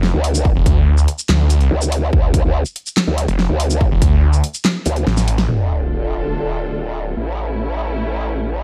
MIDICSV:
0, 0, Header, 1, 6, 480
1, 0, Start_track
1, 0, Key_signature, -1, "minor"
1, 0, Tempo, 419580
1, 516, Time_signature, 4, 2, 24, 8
1, 9876, End_track
2, 0, Start_track
2, 0, Title_t, "String section"
2, 0, Program_c, 0, 48
2, 6276, Note_on_c, 0, 50, 69
2, 6276, Note_on_c, 0, 62, 61
2, 6276, Note_on_c, 0, 65, 65
2, 6276, Note_on_c, 0, 69, 77
2, 8177, Note_off_c, 0, 50, 0
2, 8177, Note_off_c, 0, 62, 0
2, 8177, Note_off_c, 0, 65, 0
2, 8177, Note_off_c, 0, 69, 0
2, 8196, Note_on_c, 0, 57, 68
2, 8196, Note_on_c, 0, 61, 65
2, 8196, Note_on_c, 0, 64, 76
2, 9876, Note_off_c, 0, 57, 0
2, 9876, Note_off_c, 0, 61, 0
2, 9876, Note_off_c, 0, 64, 0
2, 9876, End_track
3, 0, Start_track
3, 0, Title_t, "Wobble bass"
3, 0, Program_c, 1, 39
3, 156, Note_on_c, 1, 38, 101
3, 617, Note_off_c, 1, 38, 0
3, 1956, Note_on_c, 1, 38, 98
3, 2417, Note_off_c, 1, 38, 0
3, 2435, Note_on_c, 1, 38, 96
3, 2777, Note_off_c, 1, 38, 0
3, 2796, Note_on_c, 1, 38, 99
3, 3017, Note_off_c, 1, 38, 0
3, 3517, Note_on_c, 1, 38, 101
3, 3737, Note_off_c, 1, 38, 0
3, 3997, Note_on_c, 1, 38, 96
3, 4457, Note_off_c, 1, 38, 0
3, 5556, Note_on_c, 1, 38, 99
3, 5777, Note_off_c, 1, 38, 0
3, 6276, Note_on_c, 1, 26, 86
3, 8172, Note_off_c, 1, 26, 0
3, 8196, Note_on_c, 1, 33, 82
3, 9876, Note_off_c, 1, 33, 0
3, 9876, End_track
4, 0, Start_track
4, 0, Title_t, "Detuned saw bass"
4, 0, Program_c, 2, 39
4, 0, Note_on_c, 2, 29, 96
4, 137, Note_off_c, 2, 29, 0
4, 636, Note_on_c, 2, 28, 102
4, 737, Note_off_c, 2, 28, 0
4, 755, Note_on_c, 2, 38, 99
4, 1216, Note_off_c, 2, 38, 0
4, 1476, Note_on_c, 2, 38, 101
4, 1937, Note_off_c, 2, 38, 0
4, 3757, Note_on_c, 2, 29, 96
4, 3977, Note_off_c, 2, 29, 0
4, 4476, Note_on_c, 2, 28, 100
4, 4577, Note_off_c, 2, 28, 0
4, 4596, Note_on_c, 2, 38, 99
4, 5057, Note_off_c, 2, 38, 0
4, 5796, Note_on_c, 2, 33, 99
4, 6257, Note_off_c, 2, 33, 0
4, 9876, End_track
5, 0, Start_track
5, 0, Title_t, "Sub drop"
5, 0, Program_c, 3, 103
5, 6276, Note_on_c, 3, 60, 70
5, 8196, Note_off_c, 3, 60, 0
5, 9876, End_track
6, 0, Start_track
6, 0, Title_t, "Drums"
6, 35, Note_on_c, 9, 38, 63
6, 150, Note_off_c, 9, 38, 0
6, 275, Note_on_c, 9, 46, 92
6, 390, Note_off_c, 9, 46, 0
6, 397, Note_on_c, 9, 82, 83
6, 511, Note_off_c, 9, 82, 0
6, 515, Note_on_c, 9, 36, 114
6, 630, Note_off_c, 9, 36, 0
6, 755, Note_on_c, 9, 36, 106
6, 756, Note_on_c, 9, 42, 76
6, 870, Note_off_c, 9, 36, 0
6, 870, Note_off_c, 9, 42, 0
6, 1117, Note_on_c, 9, 82, 53
6, 1231, Note_off_c, 9, 82, 0
6, 1236, Note_on_c, 9, 42, 81
6, 1350, Note_off_c, 9, 42, 0
6, 1357, Note_on_c, 9, 82, 81
6, 1471, Note_off_c, 9, 82, 0
6, 1477, Note_on_c, 9, 38, 111
6, 1477, Note_on_c, 9, 39, 81
6, 1591, Note_off_c, 9, 38, 0
6, 1591, Note_off_c, 9, 39, 0
6, 1717, Note_on_c, 9, 42, 79
6, 1717, Note_on_c, 9, 82, 55
6, 1831, Note_off_c, 9, 42, 0
6, 1831, Note_off_c, 9, 82, 0
6, 1837, Note_on_c, 9, 42, 35
6, 1952, Note_off_c, 9, 42, 0
6, 2077, Note_on_c, 9, 82, 81
6, 2191, Note_off_c, 9, 82, 0
6, 2196, Note_on_c, 9, 46, 99
6, 2311, Note_off_c, 9, 46, 0
6, 2436, Note_on_c, 9, 36, 116
6, 2550, Note_off_c, 9, 36, 0
6, 2676, Note_on_c, 9, 36, 99
6, 2676, Note_on_c, 9, 42, 82
6, 2790, Note_off_c, 9, 36, 0
6, 2790, Note_off_c, 9, 42, 0
6, 3037, Note_on_c, 9, 82, 51
6, 3151, Note_off_c, 9, 82, 0
6, 3155, Note_on_c, 9, 42, 84
6, 3270, Note_off_c, 9, 42, 0
6, 3277, Note_on_c, 9, 82, 76
6, 3391, Note_off_c, 9, 82, 0
6, 3396, Note_on_c, 9, 38, 109
6, 3396, Note_on_c, 9, 39, 83
6, 3510, Note_off_c, 9, 38, 0
6, 3510, Note_off_c, 9, 39, 0
6, 3636, Note_on_c, 9, 42, 83
6, 3750, Note_off_c, 9, 42, 0
6, 3756, Note_on_c, 9, 42, 37
6, 3871, Note_off_c, 9, 42, 0
6, 3876, Note_on_c, 9, 38, 60
6, 3991, Note_off_c, 9, 38, 0
6, 4116, Note_on_c, 9, 46, 100
6, 4231, Note_off_c, 9, 46, 0
6, 4237, Note_on_c, 9, 82, 79
6, 4351, Note_off_c, 9, 82, 0
6, 4356, Note_on_c, 9, 36, 113
6, 4470, Note_off_c, 9, 36, 0
6, 4596, Note_on_c, 9, 36, 102
6, 4596, Note_on_c, 9, 42, 82
6, 4710, Note_off_c, 9, 36, 0
6, 4710, Note_off_c, 9, 42, 0
6, 4957, Note_on_c, 9, 82, 52
6, 5071, Note_off_c, 9, 82, 0
6, 5076, Note_on_c, 9, 42, 85
6, 5190, Note_off_c, 9, 42, 0
6, 5196, Note_on_c, 9, 82, 76
6, 5311, Note_off_c, 9, 82, 0
6, 5316, Note_on_c, 9, 38, 111
6, 5316, Note_on_c, 9, 39, 89
6, 5431, Note_off_c, 9, 38, 0
6, 5431, Note_off_c, 9, 39, 0
6, 5556, Note_on_c, 9, 42, 83
6, 5556, Note_on_c, 9, 82, 50
6, 5670, Note_off_c, 9, 42, 0
6, 5670, Note_off_c, 9, 82, 0
6, 5677, Note_on_c, 9, 42, 40
6, 5791, Note_off_c, 9, 42, 0
6, 5796, Note_on_c, 9, 38, 61
6, 5911, Note_off_c, 9, 38, 0
6, 5916, Note_on_c, 9, 38, 62
6, 5916, Note_on_c, 9, 82, 76
6, 6031, Note_off_c, 9, 38, 0
6, 6031, Note_off_c, 9, 82, 0
6, 6036, Note_on_c, 9, 46, 97
6, 6151, Note_off_c, 9, 46, 0
6, 6157, Note_on_c, 9, 38, 85
6, 6271, Note_off_c, 9, 38, 0
6, 9876, End_track
0, 0, End_of_file